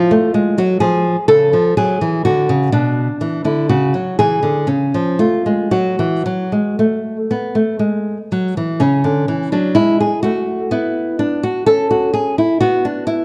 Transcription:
Already playing: F3 F4
0.11 A3
0.34 G#3
0.58 F#3 F#4
0.80 F3 G#4
1.28 C#3 A4
1.53 F3
1.77 F#3 G#4
2.01 E3
2.25 D3 F#4
2.49 C#3
2.72 B2 D4
3.21 E3
3.45 D3 E4
3.69 C#3 F#4
3.94 F#3
4.19 E3 G#4
4.43 D3
4.67 C#3 C#4
4.94 F3
5.19 A3 F4
5.46 G#3
5.71 F#3 F#4
5.99 E3
6.26 F#3
6.52 G#3
6.79 A3
7.31 B3
7.55 A3
7.79 G#3
8.32 F#3
8.57 E3
8.80 C#3 C#4
9.04 D3
9.28 E3
9.52 F#3 D4
9.75 G#3 E4
10.00 G#4
10.23 A3 F#4
10.71 B3 E4
11.19 D4
11.43 F#4
11.66 C#4 A4
11.91 F#4
12.14 G#4
12.38 E4
12.60 B3 F#4
12.85 D4
13.07 E4

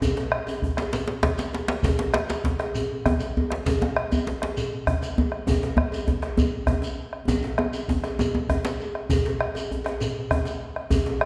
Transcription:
0.02 bombo low, cowbell, djembe slap, djembe tone, djembe bass, shekere
0.17 cowbell, djembe slap
0.32 bombo rim
0.47 cowbell, djembe tone, shekere
0.62 bombo rim, bombo low, djembe bass
0.77 bombo rim, cowbell, djembe slap, shekere
0.93 bombo rim, cowbell, djembe slap, djembe tone, shekere
1.08 djembe slap
1.23 bombo rim, bombo low, cowbell, djembe slap, djembe bass
1.38 djembe slap, djembe tone, shekere
1.53 cowbell, djembe slap, shekere
1.68 bombo rim, djembe slap
1.83 bombo low, cowbell, djembe slap, djembe tone, djembe bass, shekere
1.99 cowbell, djembe slap
2.14 bombo rim, djembe slap
2.29 cowbell, djembe slap, djembe tone, shekere
2.44 bombo low, djembe slap, djembe bass
2.59 bombo rim, cowbell, djembe slap
2.75 cowbell, djembe tone, shekere
3.06 bombo rim, bombo low, cowbell, djembe tone, djembe bass
3.19 djembe slap, djembe tone, shekere
3.37 cowbell, djembe bass
3.50 bombo rim, djembe slap
3.66 bombo low, cowbell, djembe slap, djembe tone, djembe bass, shekere
3.82 cowbell, djembe slap, djembe tone
3.96 bombo rim
4.12 cowbell, djembe tone, djembe bass, shekere
4.27 djembe slap, djembe bass
4.42 bombo rim, cowbell, djembe slap
4.57 cowbell, djembe tone, shekere
4.87 bombo rim, bombo low, djembe bass
5.02 djembe slap, djembe tone, shekere
5.18 cowbell, djembe bass
5.32 bombo rim
5.47 bombo low, cowbell, djembe tone, djembe bass, shekere
5.63 cowbell, djembe slap
5.77 bombo rim, djembe bass
5.92 cowbell, djembe tone, shekere
6.07 bombo low, djembe slap, djembe tone, djembe bass
6.22 bombo rim, cowbell, djembe slap
6.37 cowbell, djembe tone, djembe bass, shekere
6.67 bombo rim, bombo low, cowbell, djembe tone, djembe bass
6.82 djembe slap, djembe tone, shekere
7.13 bombo rim
7.28 bombo rim, bombo low, cowbell, djembe slap, djembe tone, djembe bass, shekere
7.43 cowbell, djembe slap
7.58 bombo rim, djembe slap, djembe tone
7.73 cowbell, djembe slap, djembe tone, shekere
7.88 bombo low, djembe tone, djembe bass, shekere
8.04 bombo rim, cowbell, djembe slap, shekere
8.19 cowbell, djembe tone, shekere
8.35 djembe tone
8.49 bombo rim, bombo low, cowbell, djembe bass
8.65 djembe slap, djembe tone, shekere
8.80 cowbell, shekere
8.95 bombo rim
9.10 bombo low, cowbell, djembe tone, djembe bass, shekere
9.25 cowbell, djembe slap
9.41 bombo rim
9.55 cowbell, djembe tone, shekere
9.71 djembe slap, djembe bass
9.84 bombo rim, cowbell, djembe slap
10.00 cowbell, djembe tone, shekere
10.31 bombo rim, bombo low, cowbell, djembe bass
10.45 djembe slap, djembe tone, shekere
10.76 bombo rim
10.90 bombo low, cowbell, djembe tone, djembe bass, shekere
11.06 cowbell, djembe slap
11.21 bombo rim

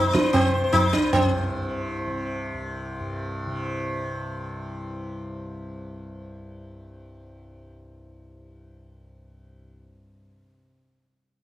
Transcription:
Already playing: C2 G2 D#4
0.00 C3
0.05 C5
0.13 D4, tabla ke
0.25 C5
0.33 C4, tabla na, tabla ge
0.43 C5
0.49 C3
0.54 C5
0.64 C5
0.73 D#4, tabla tin, tabla ge
0.83 C5
0.93 C2 D4, tabla ke
1.04 C5
1.13 G2 C#4, tabla na, tabla ge
1.30 C4
1.60 C3
2.06 C3
2.52 C2
3.00 G2
3.47 C3

